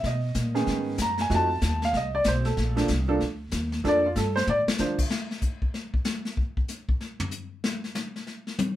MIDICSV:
0, 0, Header, 1, 5, 480
1, 0, Start_track
1, 0, Key_signature, -2, "major"
1, 0, Tempo, 316957
1, 50, Time_signature, 4, 2, 24, 8
1, 13268, End_track
2, 0, Start_track
2, 0, Title_t, "Grand piano"
2, 0, Program_c, 0, 0
2, 98, Note_on_c, 0, 75, 86
2, 802, Note_off_c, 0, 75, 0
2, 827, Note_on_c, 0, 59, 71
2, 829, Note_on_c, 0, 51, 72
2, 834, Note_on_c, 0, 61, 74
2, 835, Note_on_c, 0, 68, 79
2, 1452, Note_off_c, 0, 59, 0
2, 1453, Note_off_c, 0, 51, 0
2, 1455, Note_off_c, 0, 61, 0
2, 1456, Note_off_c, 0, 68, 0
2, 1541, Note_on_c, 0, 82, 84
2, 1808, Note_off_c, 0, 82, 0
2, 1830, Note_on_c, 0, 80, 100
2, 1962, Note_on_c, 0, 53, 72
2, 1966, Note_on_c, 0, 57, 65
2, 1970, Note_on_c, 0, 63, 62
2, 1974, Note_on_c, 0, 66, 83
2, 1985, Note_off_c, 0, 80, 0
2, 2045, Note_on_c, 0, 81, 104
2, 2236, Note_off_c, 0, 53, 0
2, 2239, Note_off_c, 0, 57, 0
2, 2241, Note_off_c, 0, 63, 0
2, 2242, Note_off_c, 0, 66, 0
2, 2736, Note_off_c, 0, 81, 0
2, 2799, Note_on_c, 0, 77, 97
2, 2949, Note_off_c, 0, 77, 0
2, 2980, Note_on_c, 0, 75, 94
2, 3247, Note_off_c, 0, 75, 0
2, 3252, Note_on_c, 0, 74, 94
2, 3415, Note_off_c, 0, 74, 0
2, 3449, Note_on_c, 0, 72, 84
2, 3717, Note_on_c, 0, 69, 81
2, 3721, Note_off_c, 0, 72, 0
2, 4172, Note_off_c, 0, 69, 0
2, 4182, Note_on_c, 0, 53, 81
2, 4185, Note_on_c, 0, 58, 70
2, 4189, Note_on_c, 0, 62, 76
2, 4195, Note_on_c, 0, 69, 82
2, 4347, Note_off_c, 0, 53, 0
2, 4348, Note_off_c, 0, 58, 0
2, 4350, Note_off_c, 0, 62, 0
2, 4353, Note_off_c, 0, 69, 0
2, 4664, Note_on_c, 0, 53, 82
2, 4673, Note_on_c, 0, 62, 84
2, 4674, Note_on_c, 0, 58, 81
2, 4677, Note_on_c, 0, 69, 99
2, 4828, Note_off_c, 0, 53, 0
2, 4832, Note_off_c, 0, 62, 0
2, 4833, Note_off_c, 0, 58, 0
2, 4835, Note_off_c, 0, 69, 0
2, 5813, Note_on_c, 0, 53, 78
2, 5813, Note_on_c, 0, 58, 72
2, 5822, Note_on_c, 0, 62, 75
2, 5826, Note_on_c, 0, 69, 91
2, 5878, Note_on_c, 0, 74, 107
2, 6081, Note_off_c, 0, 53, 0
2, 6081, Note_off_c, 0, 58, 0
2, 6086, Note_off_c, 0, 62, 0
2, 6088, Note_off_c, 0, 69, 0
2, 6136, Note_off_c, 0, 74, 0
2, 6148, Note_on_c, 0, 65, 71
2, 6303, Note_off_c, 0, 65, 0
2, 6320, Note_on_c, 0, 69, 93
2, 6596, Note_off_c, 0, 69, 0
2, 6596, Note_on_c, 0, 72, 105
2, 6766, Note_off_c, 0, 72, 0
2, 6809, Note_on_c, 0, 74, 101
2, 6977, Note_off_c, 0, 74, 0
2, 7256, Note_on_c, 0, 53, 68
2, 7262, Note_on_c, 0, 62, 62
2, 7264, Note_on_c, 0, 58, 60
2, 7269, Note_on_c, 0, 72, 71
2, 7523, Note_off_c, 0, 53, 0
2, 7526, Note_off_c, 0, 62, 0
2, 7527, Note_off_c, 0, 58, 0
2, 7529, Note_off_c, 0, 72, 0
2, 13268, End_track
3, 0, Start_track
3, 0, Title_t, "Upright bass"
3, 0, Program_c, 1, 32
3, 51, Note_on_c, 1, 47, 85
3, 516, Note_off_c, 1, 47, 0
3, 528, Note_on_c, 1, 46, 92
3, 995, Note_off_c, 1, 46, 0
3, 1016, Note_on_c, 1, 44, 93
3, 1478, Note_off_c, 1, 44, 0
3, 1488, Note_on_c, 1, 42, 83
3, 1954, Note_off_c, 1, 42, 0
3, 1967, Note_on_c, 1, 41, 87
3, 2434, Note_off_c, 1, 41, 0
3, 2449, Note_on_c, 1, 39, 93
3, 2914, Note_off_c, 1, 39, 0
3, 2924, Note_on_c, 1, 36, 92
3, 3392, Note_off_c, 1, 36, 0
3, 3411, Note_on_c, 1, 35, 93
3, 3876, Note_off_c, 1, 35, 0
3, 3892, Note_on_c, 1, 34, 94
3, 4356, Note_off_c, 1, 34, 0
3, 4375, Note_on_c, 1, 36, 99
3, 4837, Note_off_c, 1, 36, 0
3, 4856, Note_on_c, 1, 38, 89
3, 5318, Note_off_c, 1, 38, 0
3, 5337, Note_on_c, 1, 39, 93
3, 5798, Note_off_c, 1, 39, 0
3, 5821, Note_on_c, 1, 41, 84
3, 6280, Note_off_c, 1, 41, 0
3, 6293, Note_on_c, 1, 43, 98
3, 6756, Note_off_c, 1, 43, 0
3, 6771, Note_on_c, 1, 45, 98
3, 7049, Note_off_c, 1, 45, 0
3, 7257, Note_on_c, 1, 50, 93
3, 7718, Note_off_c, 1, 50, 0
3, 13268, End_track
4, 0, Start_track
4, 0, Title_t, "Muted upright bass strokes"
4, 7075, Note_on_c, 9, 29, 39
4, 7227, Note_off_c, 9, 29, 0
4, 13268, End_track
5, 0, Start_track
5, 0, Title_t, "Drums"
5, 54, Note_on_c, 9, 36, 20
5, 57, Note_on_c, 9, 25, 48
5, 57, Note_on_c, 9, 38, 49
5, 205, Note_off_c, 9, 36, 0
5, 208, Note_off_c, 9, 38, 0
5, 524, Note_on_c, 9, 44, 54
5, 530, Note_on_c, 9, 36, 18
5, 530, Note_on_c, 9, 38, 65
5, 675, Note_off_c, 9, 44, 0
5, 681, Note_off_c, 9, 36, 0
5, 681, Note_off_c, 9, 38, 0
5, 837, Note_on_c, 9, 38, 43
5, 988, Note_off_c, 9, 38, 0
5, 1009, Note_off_c, 9, 25, 0
5, 1009, Note_on_c, 9, 25, 51
5, 1009, Note_on_c, 9, 38, 52
5, 1010, Note_on_c, 9, 36, 25
5, 1160, Note_off_c, 9, 38, 0
5, 1161, Note_off_c, 9, 36, 0
5, 1482, Note_on_c, 9, 44, 71
5, 1487, Note_on_c, 9, 36, 27
5, 1488, Note_on_c, 9, 38, 69
5, 1634, Note_off_c, 9, 44, 0
5, 1638, Note_off_c, 9, 36, 0
5, 1640, Note_off_c, 9, 38, 0
5, 1781, Note_on_c, 9, 38, 47
5, 1933, Note_off_c, 9, 38, 0
5, 1967, Note_off_c, 9, 25, 0
5, 1967, Note_on_c, 9, 25, 49
5, 1967, Note_on_c, 9, 36, 25
5, 1967, Note_on_c, 9, 38, 50
5, 2118, Note_off_c, 9, 36, 0
5, 2118, Note_off_c, 9, 38, 0
5, 2444, Note_on_c, 9, 44, 56
5, 2450, Note_on_c, 9, 36, 24
5, 2450, Note_on_c, 9, 38, 68
5, 2595, Note_off_c, 9, 44, 0
5, 2601, Note_off_c, 9, 36, 0
5, 2601, Note_off_c, 9, 38, 0
5, 2755, Note_on_c, 9, 38, 46
5, 2907, Note_off_c, 9, 38, 0
5, 2928, Note_on_c, 9, 36, 23
5, 2933, Note_off_c, 9, 25, 0
5, 2933, Note_on_c, 9, 25, 47
5, 2933, Note_on_c, 9, 38, 50
5, 3080, Note_off_c, 9, 36, 0
5, 3085, Note_off_c, 9, 38, 0
5, 3396, Note_on_c, 9, 44, 58
5, 3402, Note_on_c, 9, 38, 74
5, 3408, Note_on_c, 9, 36, 25
5, 3547, Note_off_c, 9, 44, 0
5, 3553, Note_off_c, 9, 38, 0
5, 3559, Note_off_c, 9, 36, 0
5, 3707, Note_on_c, 9, 38, 44
5, 3858, Note_off_c, 9, 38, 0
5, 3890, Note_on_c, 9, 36, 25
5, 3893, Note_off_c, 9, 25, 0
5, 3893, Note_on_c, 9, 25, 55
5, 3893, Note_on_c, 9, 38, 50
5, 4042, Note_off_c, 9, 36, 0
5, 4045, Note_off_c, 9, 38, 0
5, 4192, Note_on_c, 9, 38, 55
5, 4344, Note_off_c, 9, 38, 0
5, 4361, Note_on_c, 9, 44, 54
5, 4367, Note_on_c, 9, 38, 65
5, 4371, Note_on_c, 9, 36, 27
5, 4512, Note_off_c, 9, 44, 0
5, 4519, Note_off_c, 9, 38, 0
5, 4522, Note_off_c, 9, 36, 0
5, 4853, Note_off_c, 9, 25, 0
5, 4853, Note_on_c, 9, 25, 56
5, 4853, Note_on_c, 9, 38, 52
5, 4854, Note_on_c, 9, 36, 22
5, 5005, Note_off_c, 9, 38, 0
5, 5006, Note_off_c, 9, 36, 0
5, 5323, Note_on_c, 9, 44, 57
5, 5329, Note_on_c, 9, 38, 71
5, 5334, Note_on_c, 9, 36, 21
5, 5474, Note_off_c, 9, 44, 0
5, 5480, Note_off_c, 9, 38, 0
5, 5486, Note_off_c, 9, 36, 0
5, 5635, Note_on_c, 9, 38, 45
5, 5786, Note_off_c, 9, 38, 0
5, 5818, Note_on_c, 9, 36, 29
5, 5826, Note_off_c, 9, 25, 0
5, 5826, Note_on_c, 9, 25, 57
5, 5826, Note_on_c, 9, 38, 53
5, 5970, Note_off_c, 9, 36, 0
5, 5977, Note_off_c, 9, 38, 0
5, 6296, Note_on_c, 9, 44, 60
5, 6302, Note_on_c, 9, 38, 55
5, 6447, Note_off_c, 9, 44, 0
5, 6453, Note_off_c, 9, 38, 0
5, 6619, Note_on_c, 9, 38, 84
5, 6770, Note_off_c, 9, 38, 0
5, 6775, Note_on_c, 9, 47, 75
5, 6927, Note_off_c, 9, 47, 0
5, 7088, Note_on_c, 9, 38, 98
5, 7149, Note_off_c, 9, 25, 0
5, 7240, Note_off_c, 9, 38, 0
5, 7240, Note_on_c, 9, 44, 66
5, 7246, Note_on_c, 9, 38, 69
5, 7391, Note_off_c, 9, 44, 0
5, 7397, Note_off_c, 9, 38, 0
5, 7550, Note_on_c, 9, 36, 78
5, 7550, Note_on_c, 9, 49, 89
5, 7702, Note_off_c, 9, 36, 0
5, 7702, Note_off_c, 9, 49, 0
5, 7729, Note_on_c, 9, 38, 94
5, 7881, Note_off_c, 9, 38, 0
5, 8039, Note_on_c, 9, 38, 35
5, 8190, Note_off_c, 9, 38, 0
5, 8199, Note_on_c, 9, 44, 54
5, 8207, Note_on_c, 9, 36, 72
5, 8350, Note_off_c, 9, 44, 0
5, 8359, Note_off_c, 9, 36, 0
5, 8509, Note_on_c, 9, 36, 72
5, 8660, Note_off_c, 9, 36, 0
5, 8692, Note_on_c, 9, 38, 44
5, 8843, Note_off_c, 9, 38, 0
5, 8991, Note_on_c, 9, 36, 74
5, 9143, Note_off_c, 9, 36, 0
5, 9156, Note_on_c, 9, 44, 55
5, 9162, Note_on_c, 9, 38, 103
5, 9308, Note_off_c, 9, 44, 0
5, 9314, Note_off_c, 9, 38, 0
5, 9466, Note_on_c, 9, 38, 38
5, 9618, Note_off_c, 9, 38, 0
5, 9651, Note_on_c, 9, 36, 76
5, 9802, Note_off_c, 9, 36, 0
5, 9951, Note_on_c, 9, 36, 74
5, 10102, Note_off_c, 9, 36, 0
5, 10123, Note_on_c, 9, 44, 57
5, 10129, Note_on_c, 9, 38, 33
5, 10274, Note_off_c, 9, 44, 0
5, 10280, Note_off_c, 9, 38, 0
5, 10429, Note_on_c, 9, 36, 80
5, 10581, Note_off_c, 9, 36, 0
5, 10609, Note_on_c, 9, 38, 42
5, 10760, Note_off_c, 9, 38, 0
5, 10901, Note_on_c, 9, 43, 98
5, 11053, Note_off_c, 9, 43, 0
5, 11074, Note_on_c, 9, 44, 58
5, 11225, Note_off_c, 9, 44, 0
5, 11567, Note_on_c, 9, 38, 93
5, 11718, Note_off_c, 9, 38, 0
5, 11871, Note_on_c, 9, 38, 38
5, 12023, Note_off_c, 9, 38, 0
5, 12036, Note_on_c, 9, 44, 55
5, 12043, Note_on_c, 9, 38, 96
5, 12188, Note_off_c, 9, 44, 0
5, 12194, Note_off_c, 9, 38, 0
5, 12354, Note_on_c, 9, 38, 46
5, 12505, Note_off_c, 9, 38, 0
5, 12521, Note_on_c, 9, 38, 39
5, 12672, Note_off_c, 9, 38, 0
5, 12825, Note_on_c, 9, 38, 39
5, 12976, Note_off_c, 9, 38, 0
5, 12998, Note_on_c, 9, 44, 61
5, 13004, Note_on_c, 9, 48, 101
5, 13149, Note_off_c, 9, 44, 0
5, 13155, Note_off_c, 9, 48, 0
5, 13268, End_track
0, 0, End_of_file